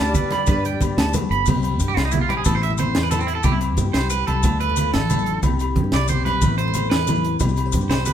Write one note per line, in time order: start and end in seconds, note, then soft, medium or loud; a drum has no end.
0.00 0.14 D2 medium
0.00 0.49 G3 medium
0.00 1.11 G3 medium
0.00 0.79 G4 medium
0.00 0.14 B4 medium
0.00 1.11 D5 medium
0.00 0.13 A5 medium
0.06 maracas soft
0.14 1.45 D3 medium
0.14 0.29 B4 medium
0.14 0.31 B4 medium
0.14 kick medium
0.14 closed hi-hat soft
0.14 low conga medium
0.14 maracas medium
0.31 0.48 B4 medium
0.31 0.46 B5 medium
0.31 snare soft
0.31 closed hi-hat soft
0.31 high conga loud
0.31 low agogo medium
0.46 0.94 G2 medium
0.46 0.96 G3 medium
0.46 0.63 B4 medium
0.46 0.80 B4 medium
0.46 kick medium
0.46 closed hi-hat medium
0.46 low conga medium
0.46 low agogo medium
0.46 maracas medium
0.64 0.80 G5 medium
0.64 closed hi-hat soft
0.64 low conga soft
0.64 maracas soft
0.73 high conga medium
0.73 low conga soft
0.81 1.45 G4 medium
0.81 1.45 B4 medium
0.81 muted clean electric guitar stroke medium
0.81 kick medium
0.81 closed hi-hat soft
0.81 low conga medium
0.81 low agogo medium
0.81 maracas medium
0.97 1.13 D2 medium
0.97 1.14 G3 medium
0.97 1.12 A5 medium
0.97 snare loud
0.97 closed hi-hat medium
1.06 low conga soft
1.13 1.31 A3 medium
1.13 closed hi-hat medium
1.13 high conga loud
1.13 low conga medium
1.13 low agogo medium
1.13 maracas medium
1.31 1.46 G1 loud
1.31 1.47 B3 medium
1.31 1.45 B5 medium
1.31 closed hi-hat soft
1.46 1.81 C2 medium
1.46 2.44 C3 medium
1.46 1.80 G4 medium
1.46 kick medium
1.46 crash medium
1.46 high conga loud
1.46 low conga loud
1.46 low agogo medium
1.46 maracas loud
1.63 2.44 C5 medium
1.63 closed hi-hat soft
1.63 low conga soft
1.63 low agogo medium
1.63 maracas soft
1.80 1.96 G2 medium
1.80 2.11 G3 medium
1.80 2.45 G4 medium
1.80 kick medium
1.80 closed hi-hat soft
1.80 maracas medium
1.88 1.97 G4 medium
1.88 high conga medium
1.97 2.30 C2 medium
1.97 2.44 E4 medium
1.97 2.05 F4 medium
1.97 snare medium
1.97 closed hi-hat medium
1.97 low agogo medium
2.05 2.13 D#4 medium
2.11 2.44 G3 medium
2.11 2.21 E4 medium
2.11 closed hi-hat soft
2.11 low conga medium
2.11 maracas medium
2.21 2.29 F4 medium
2.29 2.45 A#1 medium
2.29 2.37 G4 medium
2.29 closed hi-hat soft
2.29 high conga loud
2.29 low agogo medium
2.37 2.45 G#4 medium
2.44 2.96 A1 loud
2.44 3.10 A2 medium
2.44 2.94 E4 medium
2.44 2.54 A4 medium
2.44 kick medium
2.44 closed hi-hat medium
2.44 low conga medium
2.44 low agogo medium
2.44 maracas medium
2.55 2.63 C5 medium
2.62 3.43 C5 medium
2.62 2.71 E5 medium
2.62 closed hi-hat soft
2.70 high conga medium
2.70 low conga soft
2.78 3.42 C4 medium
2.78 3.43 A4 medium
2.78 3.02 C5 medium
2.78 closed hi-hat soft
2.78 low conga medium
2.78 low agogo medium
2.78 maracas medium
2.95 3.41 E2 loud
2.95 3.11 E4 medium
2.95 snare medium
2.95 closed hi-hat medium
2.95 low conga soft
3.03 3.10 B4 medium
3.11 3.43 A2 medium
3.11 3.43 E4 medium
3.11 3.19 A4 medium
3.11 closed hi-hat soft
3.11 high conga medium
3.11 low conga medium
3.11 low agogo medium
3.11 maracas medium
3.19 3.28 C4 medium
3.19 low conga soft
3.19 maracas soft
3.27 3.35 E4 medium
3.27 closed hi-hat soft
3.35 3.44 A4 medium
3.43 3.78 C2 medium
3.43 4.41 C3 medium
3.43 3.93 E4 medium
3.43 3.52 G4 medium
3.43 kick medium
3.43 closed hi-hat medium
3.43 high conga medium
3.43 low conga medium
3.43 low agogo medium
3.43 maracas medium
3.52 3.57 E4 medium
3.61 4.42 C5 medium
3.61 closed hi-hat medium
3.61 low conga soft
3.61 low agogo medium
3.61 maracas soft
3.77 3.93 G2 medium
3.77 4.11 G3 medium
3.77 4.11 G4 medium
3.77 kick medium
3.77 closed hi-hat soft
3.77 low conga medium
3.77 maracas medium
3.86 high conga medium
3.93 4.25 C2 medium
3.93 4.42 E4 medium
3.93 4.10 C5 medium
3.93 snare medium
3.93 closed hi-hat medium
3.93 low agogo medium
4.10 4.42 G3 medium
4.10 4.27 B4 medium
4.10 closed hi-hat soft
4.10 maracas medium
4.27 4.43 C2 medium
4.27 4.58 A4 medium
4.27 closed hi-hat soft
4.27 high conga medium
4.27 low agogo medium
4.43 4.96 D2 loud
4.43 4.93 D3 medium
4.43 4.77 A3 medium
4.43 5.42 D4 medium
4.43 4.77 F4 medium
4.43 kick medium
4.43 closed hi-hat medium
4.43 low conga medium
4.43 low agogo medium
4.43 maracas medium
4.60 5.43 A4 medium
4.60 4.91 B4 medium
4.60 closed hi-hat soft
4.69 high conga medium
4.69 low conga soft
4.76 5.42 A3 medium
4.76 5.42 F4 medium
4.76 closed hi-hat medium
4.76 low conga medium
4.76 low agogo medium
4.76 maracas medium
4.94 5.39 A1 medium
4.94 5.10 F3 medium
4.94 5.40 A4 medium
4.94 snare medium
4.94 closed hi-hat medium
4.94 low conga soft
5.09 5.27 E3 medium
5.09 closed hi-hat soft
5.09 high conga medium
5.09 low conga medium
5.09 low agogo medium
5.09 maracas medium
5.19 low conga soft
5.19 maracas soft
5.26 5.44 D3 medium
5.26 closed hi-hat soft
5.43 5.78 C2 loud
5.43 6.10 C3 medium
5.43 5.77 G3 medium
5.43 5.94 E4 medium
5.43 5.61 G4 medium
5.43 kick medium
5.43 closed hi-hat medium
5.43 high conga medium
5.43 low conga medium
5.43 low agogo medium
5.43 maracas medium
5.59 5.77 G4 medium
5.59 closed hi-hat soft
5.59 low conga soft
5.59 low agogo medium
5.59 maracas soft
5.76 5.91 G2 medium
5.76 6.10 G4 medium
5.76 kick medium
5.76 closed hi-hat soft
5.76 low conga medium
5.84 high conga medium
5.92 6.25 C2 medium
5.92 6.41 E4 medium
5.92 6.09 D5 medium
5.92 snare medium
5.92 closed hi-hat medium
5.92 low agogo medium
6.08 6.41 C3 medium
6.08 6.25 C5 medium
6.08 closed hi-hat soft
6.08 low conga medium
6.08 maracas medium
6.12 6.41 G4 medium
6.25 6.40 B1 medium
6.25 6.56 B4 medium
6.25 snare soft
6.25 closed hi-hat soft
6.25 high conga medium
6.25 low agogo medium
6.41 6.92 A1 medium
6.41 7.40 A2 medium
6.41 6.72 A3 medium
6.41 6.89 C4 medium
6.41 6.73 E4 medium
6.41 kick medium
6.41 closed hi-hat medium
6.41 low conga medium
6.41 low agogo medium
6.41 maracas loud
6.46 6.58 A4 medium
6.58 7.41 A4 medium
6.58 6.89 C5 loud
6.58 closed hi-hat medium
6.68 high conga medium
6.68 low conga soft
6.73 7.38 A3 medium
6.73 7.07 E4 medium
6.73 closed hi-hat medium
6.73 low conga medium
6.73 low agogo medium
6.73 maracas medium
6.90 7.37 E2 medium
6.90 7.40 C4 medium
6.90 7.37 B4 medium
6.90 snare loud
6.90 closed hi-hat medium
6.90 low conga soft
7.07 7.39 E3 medium
7.07 7.41 E4 medium
7.07 closed hi-hat soft
7.07 high conga medium
7.07 low conga medium
7.07 low agogo medium
7.07 maracas medium
7.17 low conga soft
7.24 closed hi-hat soft
7.40 7.75 C2 loud
7.40 7.89 C3 medium
7.40 7.72 G3 medium
7.40 8.13 E4 medium
7.40 7.73 G4 medium
7.40 7.56 C5 medium
7.40 kick medium
7.40 closed hi-hat medium
7.40 high conga loud
7.40 low conga medium
7.40 low agogo medium
7.40 maracas medium
7.48 maracas soft
7.56 7.65 A4 medium
7.56 closed hi-hat soft
7.56 low agogo medium
7.56 maracas soft
7.65 8.13 C5 medium
7.65 low conga soft
7.72 7.89 G2 medium
7.72 8.13 G3 medium
7.72 8.13 G4 medium
7.72 kick medium
7.72 closed hi-hat medium
7.72 low conga medium
7.72 maracas loud
7.81 high conga medium
7.81 low conga soft
7.81 maracas soft
7.89 8.13 C2 medium
7.89 8.04 A2 medium
7.89 8.06 C5 medium
7.89 snare medium
7.89 closed hi-hat medium
7.89 low agogo medium
7.89 maracas soft
7.99 low conga soft
8.05 8.13 B2 medium
8.05 8.13 B4 medium
8.05 closed hi-hat soft
8.05 low conga medium
8.05 maracas medium